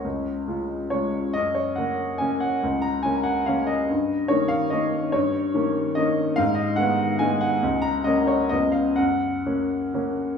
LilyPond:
<<
  \new Staff \with { instrumentName = "Grand piano" } { \time 3/4 \key fis \major \tempo 4 = 140 cis''2 cis''4 | dis''8 cis''8 fis''4 gis''8 fis''8~ | fis''8 ais''8 gis''8 fis''8 eis''8 dis''8~ | dis''4 cis''8 eis''8 dis''4 |
cis''4. r8 dis''4 | eis''8 dis''8 fis''4 gis''8 fis''8~ | fis''8 ais''8 dis''8 cis''8 dis''8 eis''8 | fis''2. | }
  \new Staff \with { instrumentName = "Grand piano" } { \clef bass \time 3/4 \key fis \major cis,4 <cis gis eis'>4 <cis gis eis'>4 | fis,4 <cis ais cis'>4 <cis ais cis'>4 | cis,4 <cis ais cis'>4 <cis ais cis'>4 | g,4 <dis ais cis'>4 <dis ais cis'>4 |
g,4 <dis ais cis'>4 <dis ais cis'>4 | gis,4 <dis gis b>4 <dis gis b>4 | cis,4 <cis ais cis'>4 <cis, cis b cis'>4 | fis,4 <cis ais cis'>4 <cis ais cis'>4 | }
>>